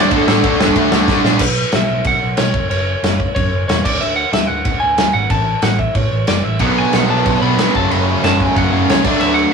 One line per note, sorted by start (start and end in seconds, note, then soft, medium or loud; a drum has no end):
0.00 0.11 D2 loud
0.00 0.11 D3 medium
0.00 0.11 A3 medium
0.00 0.12 D4 medium
0.00 0.12 D4 loud
0.00 0.13 F#4 medium
0.00 0.13 D5 loud
0.11 0.27 D2 medium
0.11 0.28 D3 loud
0.11 0.28 A3 loud
0.11 0.26 D4 loud
0.11 0.91 F#4 loud
0.11 kick loud
0.11 ride medium
0.17 1.24 A4 medium
0.28 0.43 A2 medium
0.28 0.42 D3 medium
0.28 0.43 A3 loud
0.28 0.43 D4 medium
0.28 snare loud
0.43 0.74 D2 loud
0.43 0.60 D3 medium
0.43 0.59 A3 loud
0.43 0.59 D4 loud
0.43 kick loud
0.43 ride medium
0.60 0.75 D3 medium
0.60 0.75 A3 loud
0.60 0.76 D4 loud
0.60 snare loud
0.68 kick medium
0.76 0.91 D2 loud
0.76 0.93 D3 medium
0.76 0.91 A3 loud
0.76 0.90 D4 loud
0.76 kick loud
0.76 ride medium
0.92 1.07 D2 medium
0.92 1.08 D3 medium
0.92 1.09 A3 medium
0.92 1.09 D4 loud
0.92 1.08 F#4 medium
0.92 snare loud
1.08 1.24 D2 medium
1.08 1.25 D3 medium
1.08 1.24 A3 medium
1.08 1.24 D4 loud
1.08 1.41 F#4 medium
1.08 kick loud
1.08 snare medium
1.24 1.40 A#1 loud
1.24 1.41 D3 medium
1.24 1.41 A3 medium
1.24 1.41 D4 loud
1.24 snare medium
1.39 1.63 B1 medium
1.39 1.75 B4 medium
1.39 kick loud
1.39 crash loud
1.39 crash medium
1.72 1.86 B1 medium
1.72 2.07 E5 medium
1.72 snare loud
1.72 crash medium
1.89 2.01 B1 medium
2.04 2.17 B1 medium
2.04 2.40 F#5 medium
2.04 kick loud
2.04 crash medium
2.23 2.34 B1 medium
2.37 2.55 B1 medium
2.37 2.69 C#5 medium
2.37 snare loud
2.37 crash medium
2.54 2.65 F#1 medium
2.54 kick loud
2.70 2.93 F#1 medium
2.70 3.34 C#5 medium
2.70 crash medium
3.03 3.26 F#1 medium
3.03 snare loud
3.03 crash medium
3.20 kick medium
3.35 3.48 F#2 medium
3.35 3.66 C#5 medium
3.35 kick loud
3.35 crash medium
3.52 3.63 F#1 medium
3.68 3.80 E1 medium
3.68 3.84 C#5 medium
3.68 snare loud
3.68 crash medium
3.85 3.97 D2 loud
3.85 4.02 D5 medium
3.85 kick loud
3.85 crash loud
3.99 4.23 D2 loud
3.99 4.16 E5 medium
3.99 crash medium
4.16 4.32 F#5 medium
4.33 4.44 D2 medium
4.33 4.47 E5 medium
4.33 snare loud
4.33 crash medium
4.47 4.61 D2 medium
4.47 4.82 F#5 loud
4.65 4.77 D2 medium
4.65 kick loud
4.65 crash medium
4.80 4.94 D2 medium
4.80 5.11 G#5 loud
4.98 5.10 D2 medium
4.98 snare loud
4.98 crash medium
5.13 5.26 G#1 medium
5.13 5.31 F#5 medium
5.30 5.53 A1 medium
5.30 5.65 A5 medium
5.30 kick loud
5.30 crash medium
5.62 5.86 A1 medium
5.62 5.79 F#5 loud
5.62 snare loud
5.62 crash medium
5.79 5.96 E5 medium
5.79 kick medium
5.95 6.07 A2 medium
5.95 6.28 C#5 loud
5.95 kick loud
5.95 crash medium
6.11 6.23 A1 medium
6.27 6.40 F#1 medium
6.27 6.44 D5 medium
6.27 snare loud
6.27 crash medium
6.44 6.60 A1 medium
6.44 6.60 E5 medium
6.59 6.83 B1 medium
6.59 7.41 B2 medium
6.59 7.43 F#3 medium
6.59 7.40 B3 medium
6.59 7.75 D4 loud
6.59 6.78 F#5 medium
6.59 kick loud
6.59 crash medium
6.78 6.94 G#5 medium
6.93 7.05 B1 medium
6.93 7.11 F#5 medium
6.93 snare loud
6.93 crash medium
7.07 7.20 B1 medium
7.07 7.59 F#3 medium
7.07 7.56 B3 loud
7.07 7.41 A5 loud
7.11 7.56 B2 medium
7.25 7.37 B1 medium
7.25 kick loud
7.25 crash medium
7.41 7.53 B1 medium
7.41 7.57 B2 medium
7.41 7.60 F#3 medium
7.41 7.58 B3 medium
7.41 7.76 B5 loud
7.57 7.69 B1 medium
7.57 7.74 B2 medium
7.57 7.77 F#3 medium
7.57 snare loud
7.57 crash medium
7.61 7.75 B3 medium
7.74 7.86 F#1 medium
7.74 8.54 F#2 medium
7.74 8.56 C#3 medium
7.74 8.56 F#3 loud
7.74 9.05 A3 loud
7.74 9.05 C#4 loud
7.74 7.91 A5 loud
7.74 kick loud
7.91 8.14 F#1 medium
7.91 8.24 B5 loud
7.91 crash medium
8.23 8.46 F#1 medium
8.23 8.71 F#2 medium
8.23 8.72 C#3 medium
8.23 8.71 F#3 loud
8.23 8.42 A5 loud
8.23 snare loud
8.23 crash medium
8.40 8.57 G#5 loud
8.40 kick medium
8.55 8.71 F#2 medium
8.55 8.68 F#2 loud
8.55 8.72 C#3 medium
8.55 8.70 F#3 medium
8.55 8.87 F#5 loud
8.55 kick loud
8.55 crash medium
8.72 8.84 F#1 medium
8.72 9.05 F#2 medium
8.72 9.04 C#3 medium
8.72 9.04 F#3 medium
8.88 9.00 C#2 medium
8.88 9.04 C#5 medium
8.88 snare loud
8.88 crash medium
9.04 9.17 D2 medium
9.04 9.53 D3 loud
9.04 9.53 F#3 medium
9.04 9.53 A3 loud
9.04 9.20 D5 medium
9.04 kick loud
9.04 crash medium
9.08 9.53 D4 medium
9.20 9.43 D2 medium
9.20 9.37 E5 medium
9.20 crash medium
9.34 9.53 F#5 medium